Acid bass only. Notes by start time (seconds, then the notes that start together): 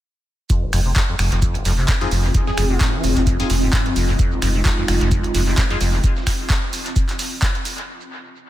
0.50 F2
0.63 F1
0.73 F2
0.86 C3
0.96 F2
1.09 F2
1.19 F2
1.32 F2
1.42 F2
1.55 F1
1.65 F2
1.78 C3
1.88 G#2
2.01 F2
2.11 F2
2.24 D#2
2.34 F2
2.47 F2
2.58 F2
2.70 C3
2.81 G#2
2.94 F3
3.04 F2
3.17 D#2
3.27 F2
3.40 F2
3.50 F2
3.63 G#2
3.73 G#2
3.86 F2
3.96 F2
4.09 F2
4.19 F2
4.32 F1
4.42 F2
4.55 C3
4.65 F2
4.78 F2
4.88 F2
5.01 F2
5.11 F2
5.24 F1
5.34 F2
5.47 C3
5.58 G#2
5.70 F2
5.81 F2
5.93 D#2